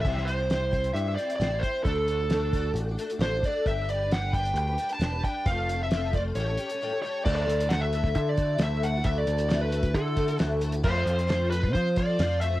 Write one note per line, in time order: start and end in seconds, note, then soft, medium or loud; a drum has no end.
0.01 0.91 C2 medium
0.01 0.27 C3 medium
0.01 0.28 E3 medium
0.01 0.25 G3 medium
0.01 0.26 E5 medium
0.01 kick loud
0.01 crash medium
0.06 0.26 C4 medium
0.06 0.27 E4 medium
0.06 0.28 C5 medium
0.17 snare soft
0.25 0.38 G3 soft
0.25 0.39 C4 medium
0.25 0.39 E4 medium
0.25 0.90 C5 medium
0.25 closed hi-hat soft
0.29 0.37 C5 medium
0.38 0.50 G3 soft
0.38 0.49 C4 soft
0.38 0.50 E4 soft
0.38 0.50 C5 soft
0.50 0.61 C3 medium
0.50 0.61 E3 medium
0.50 0.62 G3 medium
0.50 0.61 C4 medium
0.50 0.60 E4 medium
0.50 0.60 C5 medium
0.50 snare loud
0.50 closed hi-hat medium
0.61 0.70 G3 soft
0.61 0.71 C4 soft
0.61 0.72 E4 soft
0.61 0.73 C5 soft
0.71 1.06 G3 medium
0.71 1.06 C4 medium
0.71 1.06 E4 medium
0.71 1.05 C5 medium
0.71 kick medium
0.71 closed hi-hat medium
0.84 closed hi-hat medium
0.94 1.16 G2 medium
0.94 1.15 E5 medium
0.94 closed hi-hat medium
1.06 1.17 G3 soft
1.06 1.18 C4 soft
1.06 1.18 E4 soft
1.06 1.18 C5 soft
1.15 1.29 G3 medium
1.15 1.35 D5 medium
1.15 closed hi-hat medium
1.20 1.30 C4 medium
1.20 1.29 E4 medium
1.20 1.28 C5 medium
1.29 1.39 G3 soft
1.29 1.41 C4 soft
1.29 1.41 E4 soft
1.29 1.40 C5 medium
1.29 closed hi-hat medium
1.36 1.61 A1 medium
1.36 1.51 C3 medium
1.36 1.62 D5 medium
1.40 1.52 E3 medium
1.40 1.52 G3 medium
1.40 1.52 C4 medium
1.40 1.50 E4 medium
1.40 1.49 C5 medium
1.40 snare loud
1.40 closed hi-hat medium
1.51 1.61 G3 soft
1.51 1.62 C4 soft
1.51 1.63 E4 soft
1.51 1.62 C5 soft
1.59 1.85 G3 medium
1.59 1.83 C5 medium
1.63 1.86 C4 medium
1.63 1.86 E4 medium
1.63 1.86 C5 medium
1.63 kick medium
1.63 closed hi-hat medium
1.84 2.71 D2 medium
1.84 2.08 D3 medium
1.84 2.07 A3 medium
1.84 2.08 D4 medium
1.84 2.09 F#4 medium
1.84 2.71 A4 medium
1.84 2.09 A4 medium
1.84 kick loud
1.84 closed hi-hat medium
2.08 2.19 A3 medium
2.08 2.20 D4 medium
2.08 2.20 F#4 medium
2.08 2.18 A4 medium
2.08 closed hi-hat medium
2.20 2.31 D4 soft
2.20 2.32 F#4 soft
2.20 2.31 A4 soft
2.30 2.54 D3 medium
2.30 2.51 A3 medium
2.30 2.53 D4 medium
2.30 2.54 F#4 medium
2.30 2.54 A4 medium
2.30 snare loud
2.30 closed hi-hat medium
2.52 2.86 A3 medium
2.52 2.87 D4 medium
2.52 2.88 F#4 medium
2.52 2.87 A4 medium
2.52 kick medium
2.52 closed hi-hat medium
2.74 2.96 A1 medium
2.74 closed hi-hat medium
2.88 2.97 D4 soft
2.88 2.99 F#4 soft
2.88 2.99 A4 medium
2.97 3.09 A3 medium
2.97 3.10 D4 medium
2.97 3.10 F#4 medium
2.97 3.09 A4 medium
2.97 closed hi-hat medium
3.10 3.20 D4 soft
3.10 3.21 F#4 soft
3.10 3.21 A4 soft
3.10 closed hi-hat medium
3.19 3.41 A1 medium
3.19 3.32 D3 medium
3.19 3.32 A3 medium
3.19 3.32 D4 medium
3.19 3.33 F#4 medium
3.19 3.32 A4 medium
3.19 3.44 C5 medium
3.19 snare loud
3.19 closed hi-hat medium
3.33 3.45 D4 soft
3.33 3.44 F#4 soft
3.33 3.44 A4 medium
3.43 3.67 A3 medium
3.43 3.67 D4 medium
3.43 3.67 F#4 medium
3.43 3.68 A4 medium
3.43 3.67 D5 medium
3.43 kick medium
3.43 closed hi-hat medium
3.66 4.52 G1 medium
3.66 3.89 G3 medium
3.66 3.90 D4 medium
3.66 3.90 G4 medium
3.66 3.90 E5 medium
3.66 kick loud
3.66 closed hi-hat medium
3.70 3.90 B4 medium
3.89 4.01 G3 medium
3.89 4.12 D5 medium
3.89 closed hi-hat medium
3.93 4.02 D4 medium
3.93 4.03 G4 medium
3.93 4.01 B4 medium
4.02 4.12 D4 soft
4.02 4.13 G4 soft
4.02 4.12 B4 medium
4.11 4.34 G3 medium
4.11 4.35 D4 medium
4.11 4.35 G4 medium
4.11 4.35 B4 medium
4.11 4.34 F#5 medium
4.11 snare loud
4.11 closed hi-hat medium
4.33 4.68 G3 medium
4.33 4.57 G5 medium
4.33 kick medium
4.33 closed hi-hat medium
4.38 4.69 D4 medium
4.38 4.69 G4 medium
4.38 4.66 B4 medium
4.45 closed hi-hat medium
4.54 4.76 D2 medium
4.54 closed hi-hat medium
4.58 4.88 G5 medium
4.67 4.80 D4 soft
4.67 4.80 G4 soft
4.67 4.78 B4 medium
4.78 4.90 G3 medium
4.78 4.91 D4 medium
4.78 4.91 G4 medium
4.78 closed hi-hat medium
4.83 4.89 B4 medium
4.89 5.00 D4 soft
4.89 5.01 G4 soft
4.89 5.01 B4 medium
4.89 5.24 A5 medium
4.89 closed hi-hat medium
4.99 5.21 E1 medium
4.99 5.12 G3 medium
4.99 5.12 D4 medium
4.99 5.12 G4 medium
4.99 5.10 B4 medium
4.99 snare loud
4.99 closed hi-hat medium
5.12 5.23 D4 soft
5.12 5.23 G4 soft
5.12 5.23 B4 soft
5.22 5.45 G3 medium
5.22 5.46 D4 medium
5.22 5.46 G4 medium
5.22 5.47 B4 medium
5.22 5.47 G5 medium
5.22 kick medium
5.22 closed hi-hat medium
5.46 6.31 F1 loud
5.46 5.69 F3 medium
5.46 5.70 A3 medium
5.46 5.70 F4 medium
5.46 5.81 F5 medium
5.46 kick loud
5.46 closed hi-hat medium
5.50 5.70 C4 medium
5.50 5.71 A4 medium
5.69 5.81 A3 medium
5.69 5.81 C4 medium
5.69 5.82 F4 medium
5.69 closed hi-hat medium
5.74 5.80 A4 medium
5.82 5.93 C4 soft
5.82 5.93 F4 soft
5.82 5.92 A4 soft
5.82 6.15 E5 medium
5.91 6.15 F3 medium
5.91 6.15 A3 medium
5.91 6.15 C4 medium
5.91 6.15 F4 medium
5.91 snare loud
5.91 closed hi-hat medium
5.96 6.16 A4 medium
6.13 6.37 A3 medium
6.13 6.21 D5 medium
6.13 kick medium
6.13 closed hi-hat medium
6.17 6.38 C4 medium
6.17 6.39 F4 medium
6.17 6.39 A4 medium
6.35 6.56 A1 medium
6.35 6.48 A2 medium
6.35 6.48 E3 medium
6.35 6.99 C#5 medium
6.35 closed hi-hat medium
6.39 6.48 G3 medium
6.39 6.48 C#4 medium
6.39 6.47 G4 medium
6.39 6.45 A4 medium
6.47 6.57 G3 soft
6.47 6.59 C#4 medium
6.47 6.58 G4 soft
6.47 6.58 A4 soft
6.57 6.69 G3 medium
6.57 6.70 C#4 medium
6.57 6.70 G4 medium
6.57 closed hi-hat medium
6.62 6.70 A4 medium
6.69 6.82 G4 soft
6.69 6.81 A4 medium
6.69 closed hi-hat medium
6.74 6.81 G3 soft
6.74 6.81 C#4 soft
6.81 6.92 A2 medium
6.81 6.92 E3 medium
6.81 6.92 G3 medium
6.81 6.92 C#4 medium
6.81 6.90 G4 medium
6.81 6.90 A4 medium
6.91 7.02 G3 soft
6.91 7.04 C#4 soft
6.91 7.03 G4 medium
6.91 7.03 A4 medium
7.02 7.25 G3 medium
7.02 7.26 C#4 medium
7.02 7.27 G4 medium
7.02 7.24 C#5 medium
7.06 7.27 A4 medium
7.25 7.46 D2 loud
7.25 7.60 D3 medium
7.25 7.60 A3 medium
7.25 7.60 E4 medium
7.25 7.60 F#4 medium
7.25 7.58 A4 medium
7.25 7.34 D5 loud
7.25 kick loud
7.25 crash loud
7.36 7.71 D5 loud
7.47 8.15 D2 medium
7.47 closed hi-hat medium
7.60 7.69 E4 soft
7.60 7.70 F#4 soft
7.60 7.70 A4 medium
7.60 closed hi-hat medium
7.69 7.92 D3 medium
7.69 7.92 A3 medium
7.69 7.93 E4 medium
7.69 7.93 F#4 medium
7.69 7.93 A4 medium
7.69 7.81 F#5 loud
7.69 snare loud
7.69 closed hi-hat medium
7.81 8.14 E5 loud
7.93 8.35 A3 medium
7.93 8.36 E4 medium
7.93 8.36 F#4 medium
7.93 8.38 A4 medium
7.93 closed hi-hat medium
8.04 kick medium
8.04 snare soft
8.15 8.57 D3 medium
8.15 8.29 E5 loud
8.15 kick loud
8.15 closed hi-hat medium
8.29 8.62 D5 loud
8.36 8.58 A3 medium
8.36 8.59 E4 medium
8.36 8.59 F#4 medium
8.36 8.59 A4 medium
8.36 kick medium
8.36 closed hi-hat medium
8.58 9.01 D2 medium
8.58 8.81 D3 medium
8.58 8.82 A3 medium
8.58 8.82 E4 medium
8.58 8.83 F#4 medium
8.58 8.83 A4 medium
8.58 snare loud
8.58 closed hi-hat medium
8.63 8.85 E5 medium
8.83 8.94 A3 medium
8.83 8.94 E4 medium
8.83 8.95 F#4 medium
8.83 8.94 A4 medium
8.83 9.04 F#5 medium
8.83 closed hi-hat medium
8.95 9.04 E4 soft
8.95 9.04 F#4 soft
8.95 9.05 A4 medium
9.04 9.26 D2 loud
9.04 9.38 D3 medium
9.04 9.38 A3 medium
9.04 9.39 E4 medium
9.04 9.39 F#4 medium
9.04 9.36 A4 medium
9.04 9.18 E5 loud
9.04 kick loud
9.04 closed hi-hat medium
9.18 9.48 D5 medium
9.27 9.94 D2 medium
9.27 closed hi-hat medium
9.37 9.49 E4 soft
9.37 9.50 F#4 soft
9.37 9.49 A4 medium
9.37 closed hi-hat medium
9.49 9.72 D3 medium
9.49 9.69 A3 medium
9.49 9.71 E4 medium
9.49 9.72 F#4 medium
9.49 9.72 A4 medium
9.49 9.61 D5 medium
9.49 snare loud
9.49 closed hi-hat medium
9.61 9.95 B4 medium
9.70 9.82 A3 medium
9.70 9.83 E4 medium
9.70 9.81 F#4 medium
9.70 9.80 A4 medium
9.70 closed hi-hat medium
9.81 10.16 E4 soft
9.81 10.17 F#4 soft
9.81 10.16 A4 soft
9.81 kick medium
9.81 closed hi-hat medium
9.94 10.37 D3 loud
9.94 10.36 A4 medium
9.94 kick medium
9.94 closed hi-hat medium
10.16 10.28 A3 medium
10.16 10.28 E4 medium
10.16 10.28 F#4 medium
10.16 10.26 A4 medium
10.16 kick medium
10.16 closed hi-hat medium
10.27 10.37 E4 soft
10.27 10.38 F#4 soft
10.27 10.39 A4 soft
10.27 closed hi-hat medium
10.38 10.82 D2 medium
10.38 10.61 D3 medium
10.38 10.59 A3 medium
10.38 10.60 E4 medium
10.38 10.62 F#4 medium
10.38 10.62 A4 medium
10.38 snare loud
10.38 closed hi-hat medium
10.61 10.73 A3 medium
10.61 10.73 E4 medium
10.61 10.74 F#4 medium
10.61 10.72 A4 medium
10.61 closed hi-hat medium
10.72 10.83 E4 soft
10.72 10.84 F#4 medium
10.72 10.85 A4 medium
10.72 closed hi-hat medium
10.83 11.05 F2 loud
10.83 11.18 F3 medium
10.83 11.18 A3 medium
10.83 11.18 C4 medium
10.83 11.17 F4 medium
10.83 11.50 C5 medium
10.83 11.16 C5 medium
10.83 kick loud
10.83 crash loud
11.06 11.75 F2 medium
11.06 closed hi-hat medium
11.18 11.27 C4 soft
11.18 11.27 F4 soft
11.18 11.28 C5 medium
11.18 closed hi-hat medium
11.27 11.51 F3 medium
11.27 11.50 A3 medium
11.27 11.51 C4 medium
11.27 11.51 F4 medium
11.27 11.52 C5 medium
11.27 snare loud
11.27 closed hi-hat medium
11.50 11.63 A3 medium
11.50 11.63 C4 medium
11.50 11.62 F4 medium
11.50 11.73 B4 medium
11.50 11.61 C5 medium
11.50 closed hi-hat medium
11.63 11.96 C4 soft
11.63 11.97 F4 soft
11.63 11.97 C5 medium
11.63 kick medium
11.73 12.17 F3 loud
11.73 11.97 C5 medium
11.73 kick loud
11.73 closed hi-hat medium
11.96 12.18 A3 medium
11.96 12.18 C4 medium
11.96 12.18 F4 medium
11.96 12.19 C5 medium
11.96 12.39 D5 medium
11.96 kick medium
11.96 closed hi-hat medium
12.18 12.60 F2 medium
12.18 12.41 F3 medium
12.18 12.39 A3 medium
12.18 12.40 C4 medium
12.18 12.41 F4 medium
12.18 12.42 C5 medium
12.18 snare loud
12.18 closed hi-hat medium
12.40 12.53 A3 medium
12.40 12.53 C4 medium
12.40 12.50 F4 medium
12.40 12.48 C5 medium
12.40 12.60 E5 medium
12.40 closed hi-hat medium
12.49 12.60 F4 soft
12.49 12.60 C5 medium
12.54 12.60 C4 soft